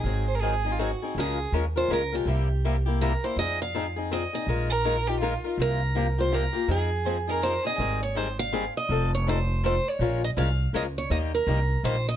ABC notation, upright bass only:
X:1
M:3/4
L:1/8
Q:"Swing" 1/4=163
K:Fm
V:1 name="Upright bass" clef=bass
A,,,6 | D,,2 E,,2 D,,2 | C,,6 | F,,6 |
B,,,6 | C,,6 | F,,6 | [K:Ab] A,,,6 |
F,,,6 | B,,,2 C,,2 D,,2 | E,,2 C,,2 B,,,2 |]